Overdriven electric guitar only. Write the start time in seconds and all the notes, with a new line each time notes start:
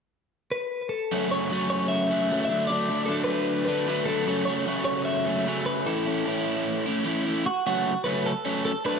1.12 F#2 C#3 F#3 A3 C#4
1.31 F#3 A3 C#4
1.50 F#2 C#3 F#3 A3 C#4
2.11 F#3 A3 C#4
2.31 C#3 F#3 A3 C#4
2.49 D3 F#3 A3 D4
2.69 D3 F#3 A3 D4
2.89 F#3 A3 D4
3.08 D3 F#3 A3 D4
3.68 F#3 A3 D4
3.88 D3 F#3 A3 D4
4.08 F#3 A3 D4
4.26 F#2 C#3 F#3 A3 C#4
4.47 F#3 A3 C#4
4.66 F#2 C#3 F#3 A3 C#4
5.26 F#3 A3 C#4
5.46 C#3 F#3 A3 C#4
5.66 F#3 A3 C#4
5.86 A2 E3 A3 C#4 E4
6.06 A3 C#4 E4
6.25 A2 E3 A3 C#4 E4
6.86 A3 C#4 E4
7.04 E3 A3 C#4 E4
7.25 A3 C#4 E4
7.66 C#3 F#3 A3 C#4
8.05 C#3 F#3 A3 C#4
8.45 C#3 F#3 A3 C#4
8.85 D3 F#3 A3 D4